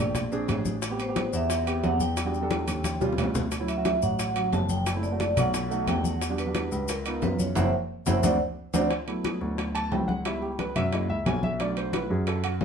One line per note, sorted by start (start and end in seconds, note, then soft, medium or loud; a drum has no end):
0.00 0.45 A#1 medium
0.00 0.14 A3 medium
0.00 0.14 D4 medium
0.00 0.15 G4 medium
0.00 0.28 D5 medium
0.15 high bongo medium
0.15 high conga soft
0.15 low conga medium
0.15 high timbale medium
0.15 maracas medium
0.32 0.73 C4 medium
0.32 0.73 D4 medium
0.32 0.74 G#4 loud
0.32 high conga soft
0.32 maracas soft
0.48 1.27 A1 medium
0.48 high bongo soft
0.48 low bongo medium
0.48 high conga medium
0.48 high timbale medium
0.48 low timbale medium
0.48 maracas soft
0.65 high bongo soft
0.65 high conga medium
0.65 maracas medium
0.82 high bongo medium
0.82 high conga soft
0.82 high timbale medium
0.82 maracas medium
0.90 1.02 B3 medium
0.90 1.03 C4 medium
0.90 1.03 G4 medium
0.99 1.16 C5 medium
0.99 high bongo soft
0.99 high conga soft
0.99 high timbale medium
0.99 maracas soft
1.08 1.49 B3 medium
1.08 1.49 C4 medium
1.08 1.50 G4 medium
1.16 1.25 C5 medium
1.16 high bongo medium
1.16 high conga loud
1.16 high timbale medium
1.16 low timbale medium
1.16 maracas soft
1.33 1.80 E2 medium
1.33 1.86 E5 medium
1.33 high bongo soft
1.33 maracas medium
1.50 high bongo medium
1.50 high conga soft
1.50 high timbale medium
1.50 maracas medium
1.66 2.08 B3 medium
1.66 2.08 C4 medium
1.66 2.08 G4 medium
1.66 high conga soft
1.66 high timbale medium
1.66 maracas soft
1.83 2.62 E2 medium
1.83 1.99 F#5 loud
1.83 high bongo soft
1.83 low bongo medium
1.83 high conga medium
1.83 low timbale medium
1.83 maracas soft
2.00 2.97 G5 medium
2.00 high bongo soft
2.00 high conga medium
2.00 maracas medium
2.17 high bongo medium
2.17 high conga soft
2.17 high timbale medium
2.17 maracas medium
2.24 2.37 G3 medium
2.24 2.37 D4 medium
2.24 2.38 F#4 medium
2.34 high bongo soft
2.34 high conga soft
2.34 maracas soft
2.42 2.83 G3 medium
2.42 2.84 D4 medium
2.42 2.84 A4 medium
2.51 high bongo medium
2.51 high conga medium
2.51 high timbale medium
2.51 low timbale medium
2.51 maracas soft
2.67 3.15 D#2 medium
2.67 high bongo soft
2.67 high conga medium
2.67 high timbale medium
2.67 maracas medium
2.84 high bongo medium
2.84 high conga medium
2.84 high timbale medium
2.84 maracas medium
3.00 3.42 G3 medium
3.00 3.42 C#4 medium
3.00 3.43 F4 medium
3.00 high bongo medium
3.00 low conga medium
3.00 maracas soft
3.13 low bongo medium
3.18 3.96 D2 medium
3.18 low conga medium
3.18 high timbale medium
3.18 low timbale medium
3.18 maracas soft
3.24 low bongo medium
3.35 low bongo medium
3.35 low conga medium
3.35 maracas medium
3.51 high bongo medium
3.51 high conga soft
3.51 high timbale medium
3.51 maracas medium
3.60 3.72 F#3 medium
3.60 3.72 C#4 medium
3.60 3.72 E4 medium
3.68 3.85 E5 loud
3.68 high bongo soft
3.68 high conga soft
3.68 high timbale medium
3.68 maracas soft
3.76 4.18 F#3 medium
3.76 4.18 C#4 medium
3.76 4.19 F#4 medium
3.85 4.03 E5 medium
3.85 high bongo medium
3.85 high conga loud
3.85 high timbale medium
3.85 low timbale medium
3.85 maracas soft
4.02 4.49 A1 medium
4.02 4.50 F#5 medium
4.02 high bongo soft
4.02 maracas medium
4.19 high bongo medium
4.19 high conga soft
4.19 high timbale medium
4.19 maracas medium
4.35 4.77 F#3 medium
4.35 4.77 C#4 medium
4.35 4.77 F#4 medium
4.35 high conga soft
4.35 high timbale medium
4.35 maracas soft
4.52 5.31 F#1 medium
4.52 4.70 A5 loud
4.52 high bongo soft
4.52 low bongo medium
4.52 high conga medium
4.52 low timbale medium
4.52 maracas soft
4.69 4.86 G5 medium
4.69 high bongo soft
4.69 high conga medium
4.69 maracas medium
4.86 high bongo medium
4.86 high conga soft
4.86 high timbale medium
4.86 maracas medium
4.95 5.07 A3 medium
4.95 5.07 C4 medium
4.95 5.07 E4 medium
5.03 5.19 D5 medium
5.03 high bongo soft
5.03 high conga soft
5.03 maracas soft
5.11 5.53 A3 medium
5.11 5.53 C4 medium
5.11 5.53 F#4 medium
5.20 5.37 D5 medium
5.20 high bongo medium
5.20 high conga medium
5.20 high timbale medium
5.20 low timbale medium
5.20 maracas soft
5.37 5.84 B1 medium
5.37 5.89 F#5 medium
5.37 high bongo soft
5.37 high conga soft
5.37 low conga medium
5.37 high timbale medium
5.37 maracas medium
5.54 high bongo medium
5.54 high conga soft
5.54 high timbale medium
5.54 maracas medium
5.70 6.12 A3 medium
5.70 6.12 D#4 medium
5.70 6.12 F#4 medium
5.70 high conga soft
5.70 maracas soft
5.87 6.66 E2 medium
5.87 6.05 G5 medium
5.87 high bongo soft
5.87 low bongo medium
5.87 high conga medium
5.87 high timbale medium
5.87 low timbale medium
5.87 maracas soft
6.04 6.20 F#5 medium
6.04 high bongo soft
6.04 high conga medium
6.04 maracas medium
6.21 high bongo medium
6.21 high conga soft
6.21 high timbale medium
6.21 maracas medium
6.30 6.41 G3 medium
6.30 6.42 D4 medium
6.30 6.42 F#4 medium
6.38 6.54 B4 medium
6.38 high bongo soft
6.38 high conga soft
6.38 high timbale medium
6.38 maracas soft
6.46 6.88 G3 medium
6.46 6.88 D4 medium
6.46 6.88 F#4 medium
6.55 6.90 B4 medium
6.55 high bongo medium
6.55 high conga medium
6.55 high timbale medium
6.55 low timbale medium
6.55 maracas soft
6.72 7.19 C#2 medium
6.72 high bongo soft
6.72 maracas medium
6.88 7.24 A#4 medium
6.88 high bongo medium
6.88 high conga soft
6.88 high timbale medium
6.88 maracas medium
7.05 7.47 B3 medium
7.05 7.47 D#4 medium
7.05 7.47 F4 medium
7.05 high conga soft
7.05 high timbale medium
7.05 maracas soft
7.22 7.53 F#2 medium
7.22 7.40 B4 medium
7.22 high bongo soft
7.22 low bongo medium
7.22 high conga medium
7.22 low timbale medium
7.22 maracas soft
7.39 7.55 C#5 medium
7.39 high bongo soft
7.39 high conga medium
7.39 maracas medium
7.55 7.68 F#1 loud
7.55 7.67 C4 medium
7.55 7.67 E4 medium
7.55 7.67 F#4 medium
7.55 7.66 C5 medium
7.55 7.67 E5 medium
7.55 7.66 F#5 medium
7.55 low bongo medium
7.55 high conga loud
7.55 high timbale loud
7.55 maracas medium
8.06 8.19 F#1 medium
8.06 8.18 C4 medium
8.06 8.17 E4 medium
8.06 8.17 F#4 medium
8.06 8.17 C5 medium
8.06 8.17 E5 medium
8.06 8.17 F#5 medium
8.06 low bongo medium
8.06 high conga medium
8.06 high timbale medium
8.06 maracas medium
8.23 8.35 D2 medium
8.23 8.35 C4 medium
8.23 8.34 D4 medium
8.23 8.34 F#4 medium
8.23 8.34 C5 medium
8.23 8.34 D5 medium
8.23 8.34 F#5 medium
8.23 low bongo loud
8.23 high conga loud
8.23 high timbale medium
8.23 maracas medium
8.74 8.86 D2 medium
8.74 8.85 C4 medium
8.74 8.85 D4 loud
8.74 8.85 F#4 medium
8.74 8.85 C5 medium
8.74 8.85 D5 medium
8.74 8.85 F#5 medium
8.74 low bongo medium
8.74 high conga loud
8.74 high timbale loud
8.74 maracas loud
8.90 high bongo medium
8.90 high conga soft
8.90 high timbale medium
9.07 9.90 F#3 medium
9.07 9.90 A3 soft
9.07 9.90 B3 soft
9.07 9.91 E4 medium
9.07 high bongo soft
9.07 high conga soft
9.07 high timbale medium
9.25 high bongo medium
9.25 high conga loud
9.25 high timbale medium
9.25 low timbale medium
9.41 9.88 D2 medium
9.41 high bongo soft
9.58 high bongo medium
9.58 high conga soft
9.58 high timbale medium
9.75 9.91 A5 medium
9.75 high conga soft
9.75 high timbale medium
9.91 10.70 C#2 medium
9.91 10.07 F#3 soft
9.91 10.07 A3 soft
9.91 10.07 B3 soft
9.91 10.07 E4 soft
9.91 10.08 G5 medium
9.91 high bongo soft
9.91 low bongo medium
9.91 high conga medium
9.91 low timbale medium
10.08 10.24 F#5 medium
10.08 high bongo soft
10.08 high conga medium
10.25 10.47 G3 soft
10.25 10.48 B3 soft
10.25 10.48 E4 medium
10.25 10.42 E5 medium
10.25 high bongo medium
10.25 high conga soft
10.25 high timbale medium
10.42 10.58 G4 medium
10.42 high bongo soft
10.42 high conga soft
10.59 10.76 B4 medium
10.59 high bongo medium
10.59 high conga medium
10.59 high timbale medium
10.59 low timbale medium
10.76 11.07 F#2 medium
10.76 10.92 E5 loud
10.76 high conga soft
10.76 low conga medium
10.76 high timbale medium
10.92 11.15 G#3 medium
10.92 11.15 A#3 soft
10.92 11.16 E4 medium
10.92 11.10 D#5 medium
10.92 high bongo medium
10.92 high conga soft
10.92 high timbale medium
11.09 11.25 C#2 medium
11.09 11.26 E5 medium
11.09 high conga soft
11.26 12.04 B1 medium
11.26 11.43 G#5 medium
11.26 high bongo soft
11.26 low bongo medium
11.26 high conga medium
11.26 high timbale medium
11.26 low timbale medium
11.43 11.60 E5 medium
11.43 high bongo soft
11.43 high conga medium
11.60 12.08 F#3 soft
11.60 12.08 A3 soft
11.60 12.08 D4 medium
11.60 11.77 D5 medium
11.60 high bongo medium
11.60 high conga soft
11.60 high timbale medium
11.77 11.93 C5 medium
11.77 high bongo soft
11.77 high conga soft
11.77 high timbale medium
11.93 12.10 B4 medium
11.93 high bongo medium
11.93 high conga medium
11.93 high timbale medium
11.93 low timbale medium
12.10 12.57 F#2 medium
12.10 12.27 G#4 medium
12.10 high bongo soft
12.27 12.44 A4 medium
12.27 high bongo medium
12.27 high conga soft
12.27 high timbale medium
12.44 12.54 F#4 medium
12.44 high conga soft
12.44 high timbale medium
12.61 12.65 G2 medium
12.61 high bongo soft
12.61 low bongo medium
12.61 high conga medium
12.61 low timbale medium